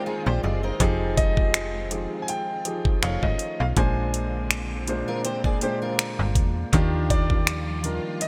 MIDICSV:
0, 0, Header, 1, 7, 480
1, 0, Start_track
1, 0, Tempo, 740741
1, 520, Time_signature, 4, 2, 24, 8
1, 5365, End_track
2, 0, Start_track
2, 0, Title_t, "Grand piano"
2, 0, Program_c, 0, 0
2, 761, Note_on_c, 0, 75, 110
2, 1214, Note_off_c, 0, 75, 0
2, 1440, Note_on_c, 0, 80, 66
2, 1481, Note_off_c, 0, 80, 0
2, 1484, Note_on_c, 0, 79, 86
2, 1936, Note_off_c, 0, 79, 0
2, 1962, Note_on_c, 0, 77, 89
2, 2091, Note_on_c, 0, 75, 76
2, 2094, Note_off_c, 0, 77, 0
2, 2333, Note_on_c, 0, 77, 91
2, 2337, Note_off_c, 0, 75, 0
2, 2365, Note_off_c, 0, 77, 0
2, 2442, Note_on_c, 0, 80, 88
2, 3135, Note_off_c, 0, 80, 0
2, 4603, Note_on_c, 0, 74, 85
2, 5324, Note_on_c, 0, 75, 87
2, 5343, Note_off_c, 0, 74, 0
2, 5365, Note_off_c, 0, 75, 0
2, 5365, End_track
3, 0, Start_track
3, 0, Title_t, "Steel-string acoustic guitar"
3, 0, Program_c, 1, 25
3, 39, Note_on_c, 1, 68, 75
3, 43, Note_on_c, 1, 63, 61
3, 163, Note_off_c, 1, 68, 0
3, 165, Note_off_c, 1, 63, 0
3, 169, Note_on_c, 1, 72, 81
3, 173, Note_on_c, 1, 67, 69
3, 274, Note_off_c, 1, 72, 0
3, 276, Note_off_c, 1, 67, 0
3, 281, Note_on_c, 1, 74, 79
3, 285, Note_on_c, 1, 68, 66
3, 404, Note_off_c, 1, 74, 0
3, 406, Note_off_c, 1, 68, 0
3, 410, Note_on_c, 1, 75, 72
3, 414, Note_on_c, 1, 70, 58
3, 638, Note_off_c, 1, 75, 0
3, 640, Note_off_c, 1, 70, 0
3, 3290, Note_on_c, 1, 70, 72
3, 3294, Note_on_c, 1, 65, 64
3, 3395, Note_off_c, 1, 70, 0
3, 3397, Note_off_c, 1, 65, 0
3, 3400, Note_on_c, 1, 72, 80
3, 3404, Note_on_c, 1, 67, 69
3, 3523, Note_off_c, 1, 72, 0
3, 3525, Note_off_c, 1, 67, 0
3, 3529, Note_on_c, 1, 74, 78
3, 3533, Note_on_c, 1, 68, 65
3, 3634, Note_off_c, 1, 74, 0
3, 3636, Note_off_c, 1, 68, 0
3, 3641, Note_on_c, 1, 72, 77
3, 3645, Note_on_c, 1, 67, 62
3, 3764, Note_off_c, 1, 72, 0
3, 3766, Note_off_c, 1, 67, 0
3, 3770, Note_on_c, 1, 70, 70
3, 3774, Note_on_c, 1, 65, 58
3, 4334, Note_off_c, 1, 70, 0
3, 4336, Note_off_c, 1, 65, 0
3, 5365, End_track
4, 0, Start_track
4, 0, Title_t, "Grand piano"
4, 0, Program_c, 2, 0
4, 0, Control_c, 2, 64, 127
4, 0, Note_on_c, 2, 56, 80
4, 0, Note_on_c, 2, 65, 69
4, 0, Note_on_c, 2, 70, 70
4, 0, Note_on_c, 2, 72, 92
4, 173, Note_on_c, 2, 74, 62
4, 176, Note_off_c, 2, 65, 0
4, 176, Note_on_c, 2, 65, 53
4, 276, Note_off_c, 2, 74, 0
4, 278, Note_off_c, 2, 65, 0
4, 282, Note_on_c, 2, 75, 65
4, 286, Note_on_c, 2, 67, 55
4, 404, Note_off_c, 2, 75, 0
4, 406, Note_off_c, 2, 67, 0
4, 412, Note_off_c, 2, 72, 0
4, 412, Note_on_c, 2, 72, 65
4, 416, Note_on_c, 2, 63, 54
4, 447, Note_off_c, 2, 56, 0
4, 511, Note_off_c, 2, 63, 0
4, 516, Note_on_c, 2, 53, 112
4, 521, Note_on_c, 2, 63, 101
4, 525, Note_on_c, 2, 67, 102
4, 529, Control_c, 2, 64, 0
4, 529, Note_on_c, 2, 68, 118
4, 534, Note_off_c, 2, 70, 0
4, 624, Control_c, 2, 64, 127
4, 639, Note_off_c, 2, 72, 0
4, 847, Note_off_c, 2, 53, 0
4, 849, Note_off_c, 2, 63, 0
4, 851, Note_off_c, 2, 67, 0
4, 853, Note_off_c, 2, 68, 0
4, 885, Note_on_c, 2, 53, 61
4, 889, Note_on_c, 2, 63, 63
4, 893, Note_on_c, 2, 67, 59
4, 898, Note_on_c, 2, 68, 70
4, 1203, Note_off_c, 2, 53, 0
4, 1205, Note_off_c, 2, 63, 0
4, 1206, Note_off_c, 2, 67, 0
4, 1209, Note_off_c, 2, 68, 0
4, 1234, Note_on_c, 2, 53, 69
4, 1239, Note_on_c, 2, 63, 63
4, 1243, Note_on_c, 2, 67, 60
4, 1246, Note_on_c, 2, 68, 80
4, 1670, Note_off_c, 2, 53, 0
4, 1673, Note_off_c, 2, 63, 0
4, 1675, Note_off_c, 2, 67, 0
4, 1676, Note_off_c, 2, 68, 0
4, 1718, Note_on_c, 2, 53, 69
4, 1722, Note_on_c, 2, 63, 58
4, 1726, Note_on_c, 2, 67, 58
4, 1730, Note_on_c, 2, 68, 69
4, 1949, Note_off_c, 2, 53, 0
4, 1952, Note_off_c, 2, 63, 0
4, 1956, Note_off_c, 2, 68, 0
4, 1959, Note_on_c, 2, 53, 73
4, 1961, Note_on_c, 2, 63, 64
4, 1963, Note_off_c, 2, 67, 0
4, 1965, Note_on_c, 2, 68, 68
4, 1968, Control_c, 2, 64, 0
4, 1968, Note_on_c, 2, 69, 67
4, 1971, Note_on_c, 2, 73, 84
4, 2083, Control_c, 2, 64, 127
4, 2393, Note_off_c, 2, 53, 0
4, 2394, Note_off_c, 2, 63, 0
4, 2396, Note_off_c, 2, 68, 0
4, 2397, Note_off_c, 2, 69, 0
4, 2399, Note_off_c, 2, 73, 0
4, 2437, Note_on_c, 2, 46, 92
4, 2441, Note_on_c, 2, 56, 85
4, 2445, Note_on_c, 2, 62, 92
4, 2447, Control_c, 2, 64, 0
4, 2450, Note_on_c, 2, 72, 106
4, 2575, Control_c, 2, 64, 127
4, 3089, Note_off_c, 2, 46, 0
4, 3091, Note_off_c, 2, 56, 0
4, 3092, Note_off_c, 2, 62, 0
4, 3095, Note_off_c, 2, 72, 0
4, 3159, Note_on_c, 2, 46, 86
4, 3163, Note_on_c, 2, 56, 77
4, 3167, Note_on_c, 2, 62, 75
4, 3171, Note_on_c, 2, 72, 91
4, 3593, Note_off_c, 2, 46, 0
4, 3595, Note_off_c, 2, 56, 0
4, 3597, Note_off_c, 2, 62, 0
4, 3599, Note_off_c, 2, 72, 0
4, 3639, Note_on_c, 2, 46, 79
4, 3643, Note_on_c, 2, 56, 79
4, 3647, Note_on_c, 2, 62, 75
4, 3651, Note_on_c, 2, 72, 87
4, 4289, Note_off_c, 2, 46, 0
4, 4291, Note_off_c, 2, 56, 0
4, 4293, Note_off_c, 2, 62, 0
4, 4295, Note_off_c, 2, 72, 0
4, 4358, Note_on_c, 2, 51, 117
4, 4362, Note_on_c, 2, 62, 107
4, 4365, Note_on_c, 2, 65, 104
4, 4368, Control_c, 2, 64, 0
4, 4369, Note_on_c, 2, 67, 124
4, 4497, Control_c, 2, 64, 127
4, 4687, Note_off_c, 2, 51, 0
4, 4689, Note_off_c, 2, 62, 0
4, 4691, Note_off_c, 2, 65, 0
4, 4693, Note_off_c, 2, 67, 0
4, 4729, Note_on_c, 2, 51, 64
4, 4732, Note_on_c, 2, 62, 61
4, 4736, Note_on_c, 2, 65, 60
4, 4740, Note_on_c, 2, 67, 72
4, 5044, Note_off_c, 2, 51, 0
4, 5046, Note_off_c, 2, 62, 0
4, 5048, Note_off_c, 2, 65, 0
4, 5050, Note_off_c, 2, 67, 0
4, 5078, Note_on_c, 2, 51, 71
4, 5082, Note_on_c, 2, 62, 65
4, 5087, Note_on_c, 2, 65, 64
4, 5090, Note_on_c, 2, 70, 81
4, 5365, Note_off_c, 2, 51, 0
4, 5365, Note_off_c, 2, 62, 0
4, 5365, Note_off_c, 2, 65, 0
4, 5365, Note_off_c, 2, 70, 0
4, 5365, End_track
5, 0, Start_track
5, 0, Title_t, "String section"
5, 0, Program_c, 3, 48
5, 0, Note_on_c, 3, 51, 75
5, 0, Note_on_c, 3, 58, 63
5, 0, Note_on_c, 3, 60, 66
5, 0, Note_on_c, 3, 65, 65
5, 494, Note_off_c, 3, 58, 0
5, 519, Note_on_c, 3, 56, 68
5, 1933, Note_off_c, 3, 60, 0
5, 1936, Note_off_c, 3, 51, 0
5, 1945, Note_off_c, 3, 56, 0
5, 1959, Note_on_c, 3, 51, 69
5, 1959, Note_on_c, 3, 57, 61
5, 1959, Note_on_c, 3, 61, 62
5, 2435, Note_off_c, 3, 51, 0
5, 2435, Note_off_c, 3, 57, 0
5, 2435, Note_off_c, 3, 61, 0
5, 2438, Note_on_c, 3, 50, 69
5, 2438, Note_on_c, 3, 58, 64
5, 2439, Note_on_c, 3, 60, 65
5, 4334, Note_off_c, 3, 65, 0
5, 4340, Note_off_c, 3, 50, 0
5, 4340, Note_off_c, 3, 60, 0
5, 4361, Note_on_c, 3, 55, 66
5, 4361, Note_on_c, 3, 65, 83
5, 4362, Note_on_c, 3, 53, 73
5, 5365, Note_off_c, 3, 53, 0
5, 5365, Note_off_c, 3, 55, 0
5, 5365, Note_off_c, 3, 58, 0
5, 5365, Note_off_c, 3, 65, 0
5, 5365, End_track
6, 0, Start_track
6, 0, Title_t, "FM bass"
6, 0, Program_c, 4, 39
6, 172, Note_on_c, 4, 34, 86
6, 258, Note_off_c, 4, 34, 0
6, 284, Note_on_c, 4, 30, 80
6, 471, Note_off_c, 4, 30, 0
6, 521, Note_on_c, 4, 29, 101
6, 1344, Note_off_c, 4, 29, 0
6, 1964, Note_on_c, 4, 29, 101
6, 2064, Note_off_c, 4, 29, 0
6, 2093, Note_on_c, 4, 32, 79
6, 2178, Note_off_c, 4, 32, 0
6, 2334, Note_on_c, 4, 35, 89
6, 2419, Note_off_c, 4, 35, 0
6, 2441, Note_on_c, 4, 34, 98
6, 3264, Note_off_c, 4, 34, 0
6, 4013, Note_on_c, 4, 31, 94
6, 4120, Note_on_c, 4, 40, 87
6, 4129, Note_off_c, 4, 31, 0
6, 4308, Note_off_c, 4, 40, 0
6, 4362, Note_on_c, 4, 39, 90
6, 5185, Note_off_c, 4, 39, 0
6, 5365, End_track
7, 0, Start_track
7, 0, Title_t, "Drums"
7, 519, Note_on_c, 9, 36, 100
7, 519, Note_on_c, 9, 42, 72
7, 584, Note_off_c, 9, 36, 0
7, 584, Note_off_c, 9, 42, 0
7, 761, Note_on_c, 9, 36, 96
7, 761, Note_on_c, 9, 42, 58
7, 826, Note_off_c, 9, 36, 0
7, 826, Note_off_c, 9, 42, 0
7, 889, Note_on_c, 9, 36, 91
7, 954, Note_off_c, 9, 36, 0
7, 999, Note_on_c, 9, 26, 100
7, 1001, Note_on_c, 9, 42, 68
7, 1064, Note_off_c, 9, 26, 0
7, 1066, Note_off_c, 9, 42, 0
7, 1238, Note_on_c, 9, 42, 52
7, 1303, Note_off_c, 9, 42, 0
7, 1479, Note_on_c, 9, 42, 65
7, 1544, Note_off_c, 9, 42, 0
7, 1718, Note_on_c, 9, 42, 57
7, 1783, Note_off_c, 9, 42, 0
7, 1848, Note_on_c, 9, 36, 91
7, 1913, Note_off_c, 9, 36, 0
7, 1961, Note_on_c, 9, 26, 111
7, 1961, Note_on_c, 9, 42, 68
7, 2026, Note_off_c, 9, 26, 0
7, 2026, Note_off_c, 9, 42, 0
7, 2091, Note_on_c, 9, 36, 92
7, 2156, Note_off_c, 9, 36, 0
7, 2198, Note_on_c, 9, 42, 63
7, 2263, Note_off_c, 9, 42, 0
7, 2440, Note_on_c, 9, 36, 99
7, 2440, Note_on_c, 9, 42, 73
7, 2505, Note_off_c, 9, 36, 0
7, 2505, Note_off_c, 9, 42, 0
7, 2682, Note_on_c, 9, 42, 60
7, 2747, Note_off_c, 9, 42, 0
7, 2920, Note_on_c, 9, 26, 102
7, 2922, Note_on_c, 9, 42, 65
7, 2985, Note_off_c, 9, 26, 0
7, 2987, Note_off_c, 9, 42, 0
7, 3159, Note_on_c, 9, 42, 51
7, 3224, Note_off_c, 9, 42, 0
7, 3399, Note_on_c, 9, 42, 65
7, 3464, Note_off_c, 9, 42, 0
7, 3527, Note_on_c, 9, 36, 76
7, 3592, Note_off_c, 9, 36, 0
7, 3638, Note_on_c, 9, 42, 56
7, 3703, Note_off_c, 9, 42, 0
7, 3881, Note_on_c, 9, 26, 106
7, 3882, Note_on_c, 9, 42, 67
7, 3946, Note_off_c, 9, 26, 0
7, 3946, Note_off_c, 9, 42, 0
7, 4118, Note_on_c, 9, 36, 91
7, 4118, Note_on_c, 9, 42, 66
7, 4182, Note_off_c, 9, 36, 0
7, 4183, Note_off_c, 9, 42, 0
7, 4360, Note_on_c, 9, 36, 107
7, 4361, Note_on_c, 9, 42, 73
7, 4425, Note_off_c, 9, 36, 0
7, 4425, Note_off_c, 9, 42, 0
7, 4602, Note_on_c, 9, 36, 97
7, 4603, Note_on_c, 9, 42, 59
7, 4667, Note_off_c, 9, 36, 0
7, 4668, Note_off_c, 9, 42, 0
7, 4730, Note_on_c, 9, 36, 94
7, 4795, Note_off_c, 9, 36, 0
7, 4841, Note_on_c, 9, 26, 102
7, 4843, Note_on_c, 9, 42, 68
7, 4906, Note_off_c, 9, 26, 0
7, 4908, Note_off_c, 9, 42, 0
7, 5079, Note_on_c, 9, 42, 54
7, 5144, Note_off_c, 9, 42, 0
7, 5320, Note_on_c, 9, 42, 66
7, 5365, Note_off_c, 9, 42, 0
7, 5365, End_track
0, 0, End_of_file